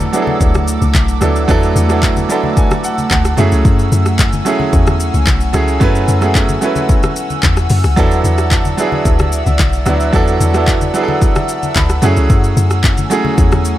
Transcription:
Already playing: grand piano F#3 B3 D4 E4 A4, analog synth pad A3 F#5 D6 E6
0.00 high conga, shaker
0.12 grand piano F#3 B3 D4 E4 G#4, shaker
0.22 grand piano A4
0.27 high conga
0.41 log drum bass D2, kick, low conga, shaker
0.54 cross-stick, high conga, shaker
0.68 shaker
0.82 log drum bass C#2, high conga, shaker
0.95 log drum bass B1, kick, clap, high conga, shaker
1.08 shaker
1.21 log drum bass D2, grand piano F#3 B3 D4 E4 A4, cross-stick, high conga, shaker
1.36 shaker
1.48 log drum bass E2, grand piano F#3 B3 D4 E4 A4, kick, low conga, shaker
1.63 shaker
1.76 log drum bass E2, high conga, shaker
1.89 grand piano F#3 B3 D4 E4 A4, cross-stick, shaker
2.03 kick, clap, low conga, shaker
2.16 high conga, shaker
2.29 grand piano F#3 B3 D4 E4 A4 B5, shaker
2.44 high conga
2.57 grand piano G#5, kick, low conga, shaker
2.71 cross-stick, high conga, shaker
2.84 grand piano F#5, shaker
2.98 high conga, shaker
3.11 log drum bass D2, grand piano F#5, kick, clap, high conga, shaker
3.25 cross-stick, shaker
3.37 log drum bass F#2, grand piano F#3 A3 C#4 E4 G#4 E5, analog synth pad G#5, high conga, shaker
3.52 log drum bass C#2, shaker
3.65 log drum bass F#2, kick, low conga, shaker
3.79 shaker
3.92 log drum bass F#2, high conga, shaker
4.06 cross-stick, shaker
4.19 kick, clap, low conga, shaker
4.33 high conga, shaker
4.45 grand piano F#3 A3 C#4 E4 G#4, shaker
4.60 high conga
4.73 log drum bass E2, kick, low conga, shaker
4.87 cross-stick, high conga, shaker
5.00 shaker
5.14 log drum bass C#2, high conga, shaker
5.27 log drum bass B1, kick, clap, high conga, shaker
5.41 shaker
5.53 log drum bass C#2, grand piano F#3 A3 C#4 E4 G#4, cross-stick, high conga, shaker
5.68 shaker
5.80 log drum bass F#2, grand piano F#3 A3 C#4 E4 B4, kick, low conga, shaker
5.95 shaker
6.08 log drum bass F#2, high conga, shaker
6.21 grand piano F#3 A3 C#4 E4 G#4, cross-stick, shaker
6.35 kick, clap, low conga, shaker
6.49 high conga, shaker
6.61 grand piano F#3 A3 C#4 E4 B4, shaker
6.76 high conga, shaker
6.89 kick, low conga, shaker
7.03 cross-stick, high conga, shaker
7.16 shaker
7.30 high conga, shaker
7.43 log drum bass E2, kick, clap, high conga, shaker
7.57 cross-stick, shaker
7.70 log drum bass F#2, open hi-hat, high conga, shaker
7.84 log drum bass C#2, cross-stick, shaker
7.96 log drum bass E2, grand piano F#3 B3 D4 E4 A4, analog synth pad D5 E5, kick, low conga, shaker
8.11 shaker
8.24 log drum bass E2, high conga, shaker
8.38 cross-stick, shaker
8.51 kick, clap, low conga, shaker
8.65 high conga, shaker
8.77 grand piano F#3 B3 D4 E4 G#4, shaker
8.92 high conga
9.05 log drum bass D2, kick, low conga, shaker
9.19 cross-stick, high conga, shaker
9.32 shaker
9.46 log drum bass C#2, high conga, shaker
9.59 log drum bass B1, kick, clap, high conga, shaker
9.73 shaker
9.86 log drum bass D2, grand piano F#3 B3 D4 E4 F#4, cross-stick, high conga, shaker
10.00 shaker
10.12 log drum bass E2, grand piano F#3 B3 D4 E4 A4, kick, low conga, shaker
10.28 shaker
10.40 log drum bass E2, high conga, shaker
10.54 grand piano F#3 B3 D4 E4 A4, cross-stick, shaker
10.67 kick, clap, low conga, shaker
10.81 high conga, shaker
10.94 grand piano F#3 B3 D4 E4 G#4, shaker
11.03 grand piano A4
11.08 high conga
11.22 kick, low conga, shaker
11.35 cross-stick, high conga, shaker
11.49 shaker
11.63 high conga, shaker
11.76 log drum bass D2, grand piano B5, kick, clap, high conga, shaker
11.89 cross-stick, shaker
12.02 log drum bass F#2, grand piano F#3 A3 C#4 E4 G#4 F#5, analog synth pad A3 G#5, high conga, shaker
12.17 log drum bass C#2, shaker
12.30 log drum bass F#2, kick, low conga, shaker
12.44 shaker
12.57 log drum bass F#2, high conga, shaker
12.70 cross-stick, shaker
12.84 kick, clap, low conga, shaker
12.97 high conga, shaker
13.10 grand piano F#3 A3 C#4 E4 G#4, shaker
13.25 high conga
13.38 log drum bass E2, kick, low conga, shaker
13.52 cross-stick, high conga, shaker
13.65 shaker

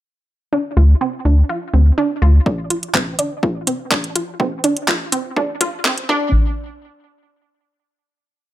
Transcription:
0.53 synth pluck D4
0.77 analog synth bass D2, synth pluck F4
1.01 synth pluck C4
1.25 analog synth bass D2, synth pluck D4
1.49 synth pluck F4
1.74 analog synth bass D2, synth pluck C4
1.98 synth pluck D4
2.22 analog synth bass D2, synth pluck F4
2.46 synth pluck D4, kick
2.70 synth pluck F4, closed hi-hat
2.83 closed hi-hat
2.95 synth pluck C4, kick, clap
3.19 synth pluck D4, closed hi-hat
3.43 synth pluck F4, kick
3.67 synth pluck C4, closed hi-hat
3.91 synth pluck D4, kick, clap
4.04 closed hi-hat
4.16 synth pluck F4, closed hi-hat
4.40 synth pluck C4, kick
4.64 synth pluck D4, closed hi-hat
4.77 closed hi-hat
4.88 synth pluck F4, kick, clap
5.12 synth pluck C4, closed hi-hat
5.36 synth pluck D4, kick
5.61 synth pluck F4, kick, closed hi-hat
5.85 synth pluck C4, kick, clap
5.98 closed hi-hat
6.09 synth pluck D4, kick

